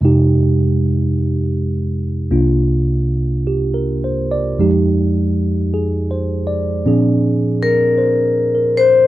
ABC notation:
X:1
M:4/4
L:1/16
Q:"Swing" 1/4=53
K:Fdor
V:1 name="Vibraphone"
z16 | z8 z2 B4 c2 |]
V:2 name="Tine electric piano"
z12 G B c d | z4 (3A2 c2 d2- d z3 c2 B2 |]
V:3 name="Tine electric piano"
[F,,C,A,EG]8 [C,,C,B,DF]8 | [F,,F,A,EG]8 [B,,F,CDA]8 |]